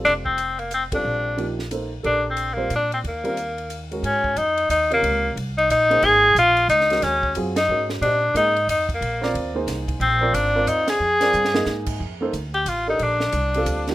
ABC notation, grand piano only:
X:1
M:3/4
L:1/8
Q:"Swing" 1/4=181
K:Bb
V:1 name="Grand piano"
[G,CFA]2 z3 [G,CFA]- | [G,CFA]2 [F,B,EG] z [B,EAc] z | [DGAB]3 [G,CFc] z2 | z [G,CFB] z3 [_A,_D_GB]- |
[K:Abmix] [A,DGB]2 z3 [C,FBd]- | [C,FBd]2 z3 [B,EAc]- | [B,EAc]2 z3 [A,DGB]- | [A,DGB]2 [G,CFA] z [A,DGB]2 |
[=D=Gce] z [B,EAe] z3 | z [CFB=d]2 [B,EAc]3 | z [CFB=d]2 [CFBd]3 | z [CFB=d]2 [B,EAe]3 |
[K:Bb] z [B,EAc] z3 [DGAB]- | [DGAB]2 z [G,CFA]2 [F,B,EG] |]